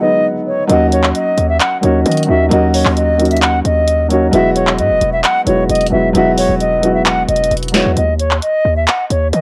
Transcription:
Already playing: grand piano B3 D#4
0.00 grand piano F#3 G#3 B3 D#4, flute D#5
0.47 flute C#5
0.67 808-style bass D#2, grand piano F#3 A#3 C#4 D#4, flute D#5, closed hi-hat
0.72 grand piano F#4
0.92 flute C#5, closed hi-hat
1.03 clap
1.15 flute D#5, closed hi-hat
1.38 808-style bass D#2, closed hi-hat
1.49 flute E5
1.60 flute F#5, clap, closed hi-hat
1.81 808-style bass D#2, grand piano F#3 A#3 C#4 D#4, flute C#5, closed hi-hat
1.85 grand piano F#4
2.06 808-style bass D#3, flute D#5, closed hi-hat
2.12 closed hi-hat
2.17 closed hi-hat
2.23 grand piano F#3, closed hi-hat
2.27 808-style bass D#2, grand piano A#3 C#4 D#4 F#4, flute E5
2.49 808-style bass D#2, grand piano F#3 A#3 C#4 D#4, flute D#5, closed hi-hat
2.53 grand piano F#4
2.74 flute C#5, open hi-hat
2.85 808-style bass D#2, clap
2.97 flute D#5, closed hi-hat
3.17 grand piano F#3 A#3 C#4 D#4, closed hi-hat
3.22 grand piano F#4, closed hi-hat
3.31 flute E5, closed hi-hat
3.37 closed hi-hat
3.42 flute F#5, clap, closed hi-hat
3.65 808-style bass D#2, flute D#5, closed hi-hat
3.88 closed hi-hat
4.09 grand piano F#3 A#3 C#4 D#4, flute C#5, closed hi-hat
4.13 grand piano F#4
4.31 808-style bass E1, grand piano F#3 G#3 B3 E4, flute E5, closed hi-hat
4.35 grand piano F#4
4.56 flute C#5, closed hi-hat
4.67 clap
4.78 808-style bass G#2, flute D#5, closed hi-hat
4.90 808-style bass E1
5.01 808-style bass E1, closed hi-hat
5.13 flute E5
5.24 flute F#5, clap, closed hi-hat
5.45 808-style bass E1, grand piano F#3 G#3 B3 E4, flute C#5, closed hi-hat
5.49 grand piano F#4
5.69 808-style bass E1, flute D#5, closed hi-hat
5.75 closed hi-hat
5.81 closed hi-hat
5.87 grand piano F#3, closed hi-hat
5.91 808-style bass E1, grand piano G#3 B3 E4 F#4, flute E5
6.13 808-style bass E1, grand piano F#3 G#3 B3 E4, flute E5, closed hi-hat
6.17 grand piano F#4
6.38 flute C#5, open hi-hat
6.49 808-style bass E1
6.60 flute D#5, closed hi-hat
6.81 grand piano F#3 G#3 B3 E4, closed hi-hat
6.85 grand piano F#4
6.94 flute E5
7.06 flute F#5, clap, closed hi-hat
7.29 808-style bass E1, flute D#5, closed hi-hat
7.36 closed hi-hat
7.44 closed hi-hat
7.51 808-style bass E1, closed hi-hat
7.57 closed hi-hat
7.63 closed hi-hat
7.68 grand piano F#3, closed hi-hat
7.73 grand piano G#3 B3 E4 F#4, flute C#5, snare, closed hi-hat
7.85 808-style bass E2
7.97 808-style bass D#2, flute D#5, closed hi-hat
8.19 flute C#5, closed hi-hat
8.31 clap
8.42 flute D#5, closed hi-hat
8.65 808-style bass D#2
8.76 flute E5
8.88 flute F#5, clap, closed hi-hat
9.10 808-style bass D#2, flute C#5, closed hi-hat
9.33 808-style bass D#3, flute D#5, closed hi-hat

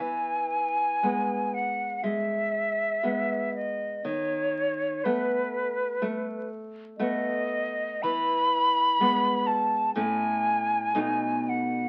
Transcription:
0.00 nylon-string guitar E3, flute G#5
1.03 nylon-string guitar G#3 B3
1.54 flute F#5
2.03 nylon-string guitar G#3, flute E5
3.03 nylon-string guitar G#3 B3
3.55 flute D#5
4.04 nylon-string guitar D#3, flute C#5
5.04 nylon-string guitar A3 B3, flute B4
6.02 nylon-string guitar A3
6.98 nylon-string guitar A3 B3, flute D#5
8.02 nylon-string guitar E3, flute B5
9.00 nylon-string guitar G#3 B3
9.47 flute A5
9.95 nylon-string guitar A2 A3 C#4, flute G#5
10.95 nylon-string guitar B2 A3 D#4
11.49 flute F#5

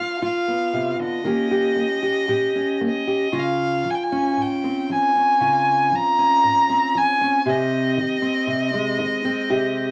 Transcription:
Already playing: steel-string acoustic guitar G2 G3 F4, violin F5
0.21 steel-string acoustic guitar D3 F4, violin F5
0.48 steel-string acoustic guitar B3
0.73 steel-string acoustic guitar C3
0.99 steel-string acoustic guitar D3
1.04 violin D#5
1.24 steel-string acoustic guitar D#3 A#3 C#4 G4
1.51 steel-string acoustic guitar G4
1.76 steel-string acoustic guitar A#3
2.03 steel-string acoustic guitar G4
2.28 steel-string acoustic guitar A#2 G4
2.55 steel-string acoustic guitar C#4
2.81 steel-string acoustic guitar A#3
2.86 violin D#5
3.07 steel-string acoustic guitar G4
3.32 steel-string acoustic guitar C#3 F4
3.38 violin F5
3.84 steel-string acoustic guitar F3
3.90 violin G#5
3.95 violin G5
4.03 violin G#5
4.12 steel-string acoustic guitar C#4
4.37 steel-string acoustic guitar G#2
4.41 violin G5
4.64 steel-string acoustic guitar C4
4.89 steel-string acoustic guitar F3, violin G#5
5.16 steel-string acoustic guitar C#4
5.40 steel-string acoustic guitar C#3 F4
5.91 steel-string acoustic guitar F3, violin A#5
6.18 steel-string acoustic guitar C#4
6.43 steel-string acoustic guitar G#2
6.69 steel-string acoustic guitar C4
6.95 steel-string acoustic guitar F3, violin G#5
7.21 steel-string acoustic guitar C#4
7.46 steel-string acoustic guitar C3 G4, violin D#5
7.97 steel-string acoustic guitar D#3
8.22 steel-string acoustic guitar C4
8.47 steel-string acoustic guitar C3
8.74 steel-string acoustic guitar G#3
8.99 steel-string acoustic guitar D#3
9.25 steel-string acoustic guitar C4
9.50 steel-string acoustic guitar C3 G4

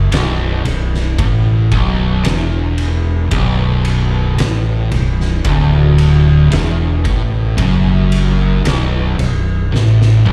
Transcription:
Already playing: distorted electric guitar F#2
0.11 fingered electric bass B0, distorted electric guitar B1, snare, ride
0.63 fingered electric bass B0, distorted electric guitar B1, ride
0.94 snare
1.18 fingered electric bass A1, distorted electric guitar A2, kick, ride
1.71 fingered electric bass B0, distorted electric guitar B1, kick, ride
2.24 fingered electric bass E1, distorted electric guitar E2, snare, ride
2.78 ride
3.31 fingered electric bass B0, distorted electric guitar B1, kick, ride
3.85 ride
4.38 fingered electric bass A1, distorted electric guitar A2, snare, ride
4.92 fingered electric bass B0, distorted electric guitar B1, ride
5.20 snare
5.44 fingered electric bass D1, distorted electric guitar D2, kick, ride
5.98 ride
6.50 fingered electric bass E1, distorted electric guitar E2, snare, ride
7.04 fingered electric bass A1, distorted electric guitar A2, kick, ride
7.57 fingered electric bass F#1, distorted electric guitar F#2, kick, ride
8.12 ride
8.64 fingered electric bass B0, distorted electric guitar B1, snare, ride
9.18 fingered electric bass B0, distorted electric guitar B1, ride
9.72 fingered electric bass A1, distorted electric guitar A2, snare
10.02 snare
10.25 fingered electric bass B0, distorted electric guitar B1, high tom

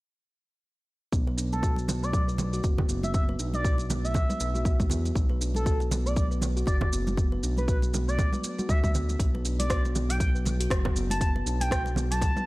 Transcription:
1.12 analog synth bass B1, kalimba B3, kick, shaker
1.27 kalimba B4, muted conga
1.37 kalimba D4, shaker
1.53 analog synth lead A4, muted conga, high conga, shaker
1.63 kalimba F#4, kick, shaker
1.76 muted conga, shaker
1.88 kalimba B3, high conga, low conga, shaker
2.03 kalimba A3, analog synth lead D5, shaker
2.13 kalimba F#3, analog synth lead D5, kick, muted conga, shaker
2.28 kalimba B4, shaker
2.38 muted conga, high conga, low conga, shaker
2.53 kalimba F#4, shaker
2.64 analog synth bass F#1, kalimba F#4, kick, muted conga, shaker
2.78 kick, low conga
2.89 analog synth bass F#1, kalimba B3, shaker
3.03 analog synth lead E5, muted conga, high conga, shaker
3.14 kalimba B3, analog synth lead E5, kick, shaker
3.29 kalimba B4, muted conga
3.39 analog synth bass B1, kalimba D4, shaker
3.53 analog synth lead D5, muted conga, high conga, shaker
3.65 kalimba F#4, kick, shaker
3.78 muted conga, shaker
3.90 kalimba B3, high conga, low conga, shaker
4.04 kalimba A3, analog synth lead E5, shaker
4.14 kalimba F#3, kick, muted conga, low conga, shaker
4.29 kalimba B4, high conga, shaker
4.40 analog synth bass B1, muted conga, shaker
4.55 kalimba F#4, high conga, shaker
4.65 kalimba F#4, kick, muted conga, high conga, shaker
4.80 kick, high conga, shaker
4.90 analog synth bass E2, kalimba B3, low conga, shaker
5.05 muted conga, shaker
5.16 analog synth bass B1, kalimba B3, kick, shaker
5.29 kalimba B4, muted conga
5.41 kalimba D4, shaker
5.54 analog synth lead A4, muted conga, high conga, shaker
5.66 kalimba F#4, kick, shaker
5.80 muted conga, shaker
5.91 kalimba B3, high conga, low conga, shaker
6.06 kalimba A3, analog synth lead D5, shaker
6.16 kalimba F#3, analog synth lead D5, kick, muted conga, shaker
6.31 kalimba B4, shaker
6.41 muted conga, high conga, low conga, shaker
6.57 kalimba F#4, shaker
6.66 analog synth bass F#1, kalimba F#4, analog synth lead D5, kick, muted conga, shaker
6.81 analog synth lead D5, kick, low conga
6.93 analog synth bass F#1, kalimba B3, shaker
7.07 muted conga, high conga, shaker
7.17 kalimba B3, kick, shaker
7.32 kalimba B4, muted conga
7.43 analog synth bass B1, kalimba D4, shaker
7.57 analog synth lead B4, muted conga, high conga, shaker
7.68 kalimba F#4, analog synth lead B4, kick, shaker
7.82 muted conga, shaker
7.93 kalimba B3, high conga, low conga, shaker
8.08 kalimba A3, analog synth lead D5, shaker
8.19 kalimba F#3, kick, muted conga, low conga, shaker
8.33 kalimba B4, high conga, shaker
8.44 muted conga, shaker
8.59 kalimba F#4, high conga, shaker
8.69 analog synth bass D2, kalimba F#4, analog synth lead E5, kick, muted conga, high conga, shaker
8.84 analog synth lead E5, kick, high conga, shaker
8.94 kalimba B3, low conga, shaker
9.09 muted conga, shaker
9.20 analog synth bass B1, kalimba B3, kick, closed hi-hat, shaker
9.34 kalimba B4, muted conga
9.45 kalimba D4, shaker
9.59 analog synth lead D5, closed hi-hat, muted conga, high conga, shaker
9.70 kalimba F#4, kick, cross-stick, closed hi-hat, shaker
9.85 muted conga, shaker
9.95 kalimba B3, high conga, low conga, shaker
10.09 kalimba F#3, analog synth lead G5, closed hi-hat, shaker
10.20 kalimba F#3, analog synth lead G5, kick, closed hi-hat, muted conga, shaker
10.35 kalimba B4, shaker
10.45 muted conga, high conga, low conga, shaker
10.60 kalimba F#4, closed hi-hat, shaker
10.70 analog synth bass F#1, kick, cross-stick, closed hi-hat, muted conga, shaker
10.85 kick, cross-stick, low conga
10.96 analog synth bass F#1, kalimba B3, shaker
11.10 analog synth lead A5, closed hi-hat, muted conga, high conga, shaker
11.21 kalimba B3, analog synth lead A5, kick, closed hi-hat, shaker
11.36 kalimba B4, muted conga
11.46 analog synth bass B1, kalimba D4, shaker
11.60 analog synth lead G5, closed hi-hat, muted conga, high conga, shaker
11.71 kalimba F#4, kick, cross-stick, closed hi-hat, shaker
11.86 muted conga, shaker
11.96 kalimba B3, high conga, low conga, shaker
12.11 kalimba F#3, analog synth lead A5, closed hi-hat, shaker
12.21 kalimba F#3, kick, closed hi-hat, muted conga, low conga, shaker
12.37 kalimba B4, high conga, shaker

